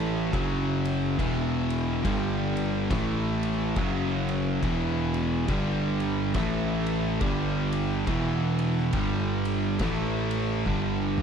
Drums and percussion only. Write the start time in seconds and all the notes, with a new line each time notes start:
0.33 kick, ride
0.85 ride
1.19 kick, ride
1.70 ride
2.05 kick, ride
2.57 ride
2.91 kick, snare, ride
3.43 ride
3.76 kick, ride
4.29 ride
4.63 kick, ride
5.14 ride
5.48 kick, ride
6.00 ride
6.34 kick, snare, ride
6.86 ride
7.21 kick, ride
7.72 ride
8.07 kick, ride
8.59 ride
8.78 snare
8.93 kick, ride
9.45 ride
9.79 kick, snare, ride
10.31 ride
10.66 kick
11.18 mid tom